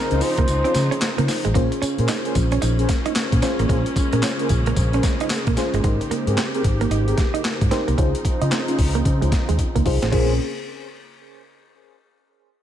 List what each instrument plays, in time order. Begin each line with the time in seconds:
Already playing: string section C#3 F3 C4 D#4, fm electric piano D#4 F4 G#4 C5, muted trumpet A#4
0.11 fingered electric bass C#2, analog polysynth C#4 D#4 F4 C5, muted clean electric guitar stroke, closed hi-hat
0.21 fm electric piano D#4 F4 G#4 C5, muted trumpet C5, open hi-hat, tambourine
0.38 fingered electric bass C#2, clean electric guitar A#3, kick, closed hi-hat
0.48 fingered electric bass C#2, closed hi-hat, tambourine
0.64 clean electric guitar C4, analog polysynth C#4 D#4 F4 C5, closed hi-hat
0.74 fingered electric bass C#3, muted clean electric guitar stroke, snare, closed hi-hat, tambourine
0.91 clean electric guitar C#4, closed hi-hat
1.01 snare, clap, closed hi-hat, tambourine
1.18 fingered electric bass C#3, clean electric guitar A#3, closed hi-hat
1.28 muted clean electric guitar stroke, snare, open hi-hat, tambourine
1.45 fingered electric bass A1, clean electric guitar G#3, closed hi-hat
1.54 fingered electric bass A#1, string section C#3 G#3 A#3 C#4, clean electric guitar A#3, fm electric piano C#4 F4 G#4 C5, kick, closed hi-hat
1.72 muted clean electric guitar stroke, closed hi-hat
1.82 clean electric guitar C#4, muted fingered electric bass stroke, closed hi-hat, tambourine
1.98 fingered electric bass A#2, analog polysynth C#4 G#4 A#4 C5, closed hi-hat
2.08 clean electric guitar D#4, snare, clap, closed hi-hat, tambourine
2.25 analog polysynth C#4 G#4 A#4 C5, closed hi-hat
2.35 fingered electric bass A#1, muted clean electric guitar stroke, kick, closed hi-hat, tambourine
2.52 clean electric guitar C#4, closed hi-hat
2.62 fingered electric bass A#1, clean electric guitar D#4, closed hi-hat, tambourine
2.78 analog polysynth C#4 G#4 A#4 C5, closed hi-hat
2.89 muted clean electric guitar stroke, kick, snare, closed hi-hat, tambourine
3.06 clean electric guitar D#4, closed hi-hat
3.15 muted clean electric guitar stroke, snare, clap, closed hi-hat, tambourine
3.32 fingered electric bass A#2, kick, closed hi-hat
3.42 fm electric piano C#4 F4 G#4 C5, clean electric guitar C#4, snare, closed hi-hat, tambourine
3.59 fingered electric bass A1, clean electric guitar A#3, closed hi-hat
3.68 fingered electric bass A#1, clean electric guitar A#3, fm electric piano C#4 F4 G#4 C5, kick, closed hi-hat
3.86 closed hi-hat
3.96 muted fingered electric bass stroke, muted clean electric guitar stroke, kick, closed hi-hat, tambourine
4.12 fingered electric bass A#2, clean electric guitar A#3, analog polysynth C#4 G#4 A#4 C5, closed hi-hat
4.23 clean electric guitar C#4, snare, clap, closed hi-hat, tambourine
4.39 analog polysynth C#4 G#4 A#4 C5, muted clean electric guitar stroke, closed hi-hat
4.49 fingered electric bass A#1, kick, closed hi-hat, tambourine
4.66 clean electric guitar A#3, closed hi-hat
4.76 fingered electric bass A#1, kick, closed hi-hat, tambourine
4.93 analog polysynth C#4 G#4 A#4 C5, clean electric guitar C#4, closed hi-hat
5.03 muted clean electric guitar stroke, kick, snare, closed hi-hat, tambourine
5.20 clean electric guitar D#4, closed hi-hat
5.30 snare, clap, closed hi-hat, tambourine
5.47 fingered electric bass A#2, clean electric guitar A#3, kick, closed hi-hat
5.56 fm electric piano C#4 F4 G#4 C5, muted clean electric guitar stroke, snare, closed hi-hat, tambourine
5.73 fingered electric bass G1, clean electric guitar G#3, closed hi-hat
5.83 fingered electric bass G#1, clean electric guitar G#3, fm electric piano D#4 G4 A#4 C5, string section G4, kick, closed hi-hat
6.01 muted clean electric guitar stroke, closed hi-hat
6.10 clean electric guitar A#3, muted fingered electric bass stroke, closed hi-hat
6.27 fingered electric bass G#2, analog polysynth C4 G4 G#4 A#4, closed hi-hat
6.37 clean electric guitar C4, snare, clap, closed hi-hat
6.53 analog polysynth C4 G4 G#4 A#4, closed hi-hat
6.64 fingered electric bass G#1, muted clean electric guitar stroke, kick, closed hi-hat
6.81 clean electric guitar A#3, closed hi-hat
6.90 fingered electric bass G#1, clean electric guitar D#4, closed hi-hat
7.07 analog polysynth C4 G4 G#4 A#4, closed hi-hat
7.18 muted clean electric guitar stroke, kick, snare, closed hi-hat
7.34 clean electric guitar D#4, closed hi-hat
7.44 muted clean electric guitar stroke, snare, clap, closed hi-hat
7.61 fingered electric bass G#2, kick, closed hi-hat
7.71 clean electric guitar C4, fm electric piano D#4 G4 A#4 C5, snare, closed hi-hat
7.88 fingered electric bass C2, clean electric guitar A#3, closed hi-hat
7.97 fingered electric bass C#2, string section C#3 F3 C4 D#4, clean electric guitar C#4, fm electric piano D#4 F4 G#4 C5, kick, closed hi-hat
8.15 closed hi-hat
8.25 muted clean electric guitar stroke, muted fingered electric bass stroke, kick, closed hi-hat
8.41 fingered electric bass C#3, analog polysynth C#4 D#4 F4 C5, clean electric guitar D#4, closed hi-hat
8.52 clean electric guitar C4, snare, clap, closed hi-hat
8.68 analog polysynth C#4 D#4 F4 C5, muted clean electric guitar stroke, closed hi-hat
8.79 fingered electric bass C#2, kick, open hi-hat
8.95 clean electric guitar A#3, closed hi-hat
9.05 fingered electric bass C#3, kick, closed hi-hat
9.21 fingered electric bass C#2, clean electric guitar G#3, analog polysynth C#4 D#4 F4 C5, closed hi-hat
9.32 muted clean electric guitar stroke, kick, snare, closed hi-hat
9.49 fingered electric bass D#2, clean electric guitar G#3, closed hi-hat
9.59 kick, closed hi-hat
9.75 fingered electric bass C#2, clean electric guitar A#3, kick, closed hi-hat
9.85 fingered electric bass C2, fm electric piano D#4 F4 G#4 C5, muted clean electric guitar stroke, kick, open hi-hat
10.02 fingered electric bass A1, clean electric guitar C4, snare, closed hi-hat
10.12 fingered electric bass A#1, string section C#3 A#3 C4 G#4, analog polysynth C#4 G#4 A#4 C5, clean electric guitar C#4, fm electric piano C#4 F4 G#4 C5, kick, crash